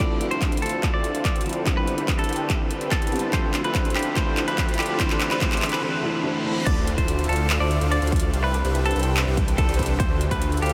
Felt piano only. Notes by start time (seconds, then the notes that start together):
Already playing: D3
0.00 F3 A3 C4 E4
1.45 D3 F3 A3 C4 E4
1.64 D3 G3 B3 C4
1.68 E4
3.11 D3 G3 B3 C4 E4
3.31 D3 F3 A3 C4
3.35 E4
4.14 D3 F3 A3 C4
4.18 E4
4.98 D3 E3 A3 C4 E4
5.39 D3 E3 A3 C4
5.43 E4
5.81 D3 E3 A3 C4
5.85 E4
6.02 D3 E3 A3 C4 E4
6.23 D3 E3 A3 C4
6.27 E4
6.43 D3 E3 A3 C4
6.48 E4